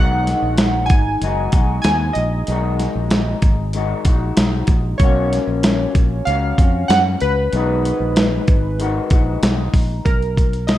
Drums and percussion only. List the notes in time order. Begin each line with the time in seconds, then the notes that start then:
0.27 snare, closed hi-hat
0.57 snare, closed hi-hat
0.90 kick, closed hi-hat
1.22 closed hi-hat
1.52 kick, closed hi-hat
1.84 snare, closed hi-hat
2.15 closed hi-hat
2.47 closed hi-hat
2.79 snare, closed hi-hat
3.10 snare, closed hi-hat
3.42 kick, closed hi-hat
3.73 closed hi-hat
4.05 kick, closed hi-hat
4.37 snare, closed hi-hat
4.67 kick, closed hi-hat
5.00 kick, closed hi-hat
5.33 snare, closed hi-hat
5.63 snare, closed hi-hat
5.95 kick, closed hi-hat
6.27 closed hi-hat
6.58 kick, closed hi-hat
6.90 snare, closed hi-hat
7.20 closed hi-hat
7.53 closed hi-hat
7.85 closed hi-hat
8.16 snare, closed hi-hat
8.48 kick, closed hi-hat
8.80 closed hi-hat
9.10 kick, closed hi-hat
9.43 snare, closed hi-hat
9.74 kick, open hi-hat
10.06 kick, closed hi-hat
10.22 closed hi-hat
10.37 kick, closed hi-hat
10.53 closed hi-hat
10.68 snare, closed hi-hat